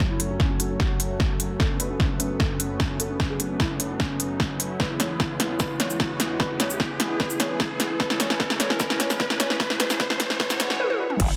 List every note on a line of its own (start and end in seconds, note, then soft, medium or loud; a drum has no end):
0.00 4.76 F#2 medium
0.00 4.76 F#3 medium
0.00 4.76 A3 medium
0.00 1.57 C#4 medium
0.00 5.48 F#4 medium
0.00 4.80 A4 medium
0.00 6.35 C#5 medium
0.00 4.80 A5 medium
0.00 riser medium
0.10 0.17 E4 medium
0.20 0.27 F#3 medium
0.20 closed hi-hat medium
0.30 0.37 F#3 medium
0.40 0.47 C#4 loud
0.40 kick medium
0.40 snare medium
0.50 0.57 F#3 medium
0.60 0.67 F#3 medium
0.60 closed hi-hat medium
0.70 0.77 F#3 medium
0.80 1.52 F#4 medium
0.80 kick loud
0.80 snare medium
1.00 closed hi-hat medium
1.20 kick medium
1.20 snare medium
1.40 closed hi-hat medium
1.60 4.77 B3 medium
1.60 1.67 A4 loud
1.60 kick loud
1.60 snare medium
1.70 1.77 C#4 medium
1.80 1.87 B4 medium
1.80 closed hi-hat medium
1.90 1.97 C#4 medium
2.00 2.07 C#4 medium
2.00 kick medium
2.00 snare medium
2.20 2.27 C#4 medium
2.20 closed hi-hat medium
2.30 2.37 C#4 medium
2.40 2.47 A4 medium
2.40 kick loud
2.40 snare medium
2.50 2.57 C#4 medium
2.60 2.67 C#4 medium
2.60 closed hi-hat medium
2.80 2.87 C#4 medium
2.80 kick medium
2.80 snare medium
2.90 2.97 C#4 medium
3.00 3.07 A4 medium
3.00 closed hi-hat medium
3.10 3.17 C#4 medium
3.20 kick loud
3.20 snare medium
3.30 3.37 G#4 medium
3.40 3.47 C#4 medium
3.40 closed hi-hat medium
3.50 3.57 C#4 medium
3.60 3.67 E4 medium
3.60 kick medium
3.60 snare medium
3.70 3.77 C#4 medium
3.80 3.87 C#4 medium
3.80 closed hi-hat medium
3.90 3.97 C#4 medium
4.00 4.72 C#4 medium
4.00 kick loud
4.00 snare medium
4.20 closed hi-hat medium
4.40 kick loud
4.40 snare medium
4.60 closed hi-hat medium
4.80 10.76 E2 medium
4.80 10.76 E3 medium
4.80 10.76 G#3 medium
4.80 7.97 B3 medium
4.80 10.80 E4 medium
4.80 4.87 B4 medium
4.80 kick loud
4.80 snare medium
4.90 4.97 E4 medium
4.90 10.80 G#4 medium
5.00 5.07 C#5 medium
5.00 snare medium
5.00 closed hi-hat medium
5.08 5.17 E4 medium
5.08 10.80 B4 medium
5.20 5.27 E4 medium
5.20 kick medium
5.20 snare medium
5.36 5.47 E4 medium
5.36 10.80 G#5 medium
5.36 snare medium
5.36 closed hi-hat medium
5.50 5.57 E4 medium
5.60 5.67 B4 medium
5.60 kick loud
5.60 snare medium
5.60 shaker medium
5.70 5.77 E4 medium
5.80 5.87 C#5 medium
5.80 snare medium
5.80 closed hi-hat medium
5.90 5.97 E4 medium
5.90 shaker medium
6.00 6.07 E4 medium
6.00 kick loud
6.00 snare medium
6.20 6.27 E4 medium
6.20 snare medium
6.20 closed hi-hat medium
6.30 6.37 E4 medium
6.40 6.47 B4 medium
6.40 kick loud
6.40 snare medium
6.50 6.57 E4 medium
6.60 6.67 C#5 medium
6.60 snare medium
6.60 closed hi-hat medium
6.70 6.77 E4 medium
6.70 shaker medium
6.80 6.87 E4 medium
6.80 kick medium
6.80 snare medium
7.00 7.07 E4 medium
7.00 snare medium
7.00 closed hi-hat medium
7.10 7.17 E4 medium
7.20 7.27 B4 loud
7.20 kick loud
7.20 snare medium
7.30 7.37 E4 medium
7.30 shaker medium
7.40 7.47 C#5 medium
7.40 snare medium
7.40 closed hi-hat medium
7.50 7.57 E4 medium
7.60 7.67 E4 medium
7.60 kick medium
7.60 snare medium
7.80 7.87 E4 medium
7.80 snare medium
7.80 closed hi-hat medium
7.90 7.97 E4 medium
8.00 10.77 C#4 medium
8.00 8.07 B4 loud
8.00 kick loud
8.00 snare medium
8.10 8.17 E4 medium
8.10 snare medium
8.20 8.27 C#5 medium
8.20 snare loud
8.20 closed hi-hat medium
8.30 8.37 E4 medium
8.30 snare medium
8.40 8.47 B4 loud
8.40 kick loud
8.40 snare medium
8.50 8.57 E4 medium
8.50 snare medium
8.60 8.67 C#5 medium
8.60 snare medium
8.60 closed hi-hat medium
8.70 8.77 E4 medium
8.70 snare medium
8.80 8.87 B4 loud
8.80 kick loud
8.80 snare loud
8.80 shaker medium
8.90 8.97 E4 medium
8.90 snare medium
9.00 9.07 C#5 medium
9.00 snare loud
9.00 closed hi-hat medium
9.10 9.17 E4 medium
9.10 snare medium
9.10 shaker medium
9.20 9.27 B4 loud
9.20 kick loud
9.20 snare loud
9.30 9.37 E4 medium
9.30 snare medium
9.40 9.47 C#5 loud
9.40 snare loud
9.40 closed hi-hat medium
9.50 9.57 E4 medium
9.50 snare medium
9.60 9.67 B4 loud
9.60 kick loud
9.60 snare loud
9.70 9.77 E4 medium
9.70 snare medium
9.80 9.87 B4 loud
9.80 snare loud
9.80 closed hi-hat medium
9.90 9.97 E4 medium
9.90 snare medium
9.90 shaker medium
10.00 10.07 B4 loud
10.00 kick loud
10.00 snare loud
10.10 10.17 E4 medium
10.10 snare medium
10.20 10.27 B4 loud
10.20 snare loud
10.20 closed hi-hat medium
10.30 10.37 E4 medium
10.30 snare medium
10.40 10.47 B4 loud
10.40 kick loud
10.40 snare loud
10.40 swell medium
10.50 10.57 E4 medium
10.50 snare medium
10.50 closed hi-hat soft
10.50 shaker soft
10.60 10.67 B4 loud
10.60 snare loud
10.60 closed hi-hat medium
10.70 10.77 E4 medium
10.70 snare medium
10.80 10.87 B4 loud
10.80 high tom medium
10.90 10.97 E4 medium
10.90 high tom medium
11.00 11.07 B4 loud
11.10 11.17 E4 medium
11.10 mid tom medium
11.20 11.28 F#1 loud
11.20 11.37 F#3 medium
11.20 11.37 C#5 medium
11.20 kick loud
11.20 closed hi-hat medium
11.20 crash loud